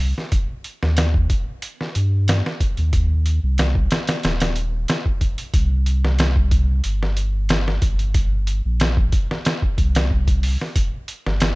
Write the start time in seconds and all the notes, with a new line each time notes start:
Already playing: C2
0.18 snare
0.32 kick, closed hi-hat
0.64 closed hi-hat
0.83 D#2, snare
0.97 snare, closed hi-hat
1.14 kick
1.30 kick, closed hi-hat
1.62 closed hi-hat
1.81 snare
1.95 G2, closed hi-hat
2.28 snare, closed hi-hat
2.46 snare
2.60 kick, closed hi-hat
2.77 D#2, closed hi-hat
2.93 kick, closed hi-hat
3.26 closed hi-hat
3.43 C2
3.58 snare, closed hi-hat
3.75 kick
3.91 snare, closed hi-hat
4.07 snare, closed hi-hat
4.23 D#1, snare, closed hi-hat
4.40 snare, closed hi-hat
4.56 closed hi-hat
4.88 snare, closed hi-hat
5.06 kick
5.21 kick, closed hi-hat
5.38 closed hi-hat
5.54 C2, kick, closed hi-hat
5.86 closed hi-hat
6.05 snare
6.19 snare, closed hi-hat
6.36 kick
6.51 kick, closed hi-hat
6.84 G1, closed hi-hat
7.03 snare
7.17 closed hi-hat
7.49 snare, closed hi-hat
7.68 snare
7.82 G1, kick, closed hi-hat
7.99 closed hi-hat
8.14 kick, closed hi-hat
8.47 closed hi-hat
8.65 A#1
8.80 snare, closed hi-hat
8.97 kick
9.12 kick, closed hi-hat
9.31 snare
9.45 snare, closed hi-hat
9.62 kick
9.78 C2, kick, closed hi-hat
9.95 snare, closed hi-hat
10.11 kick
10.28 kick, closed hi-hat
10.43 open hi-hat
10.61 snare
10.76 kick, closed hi-hat
11.08 closed hi-hat
11.26 G1, snare
11.40 snare, closed hi-hat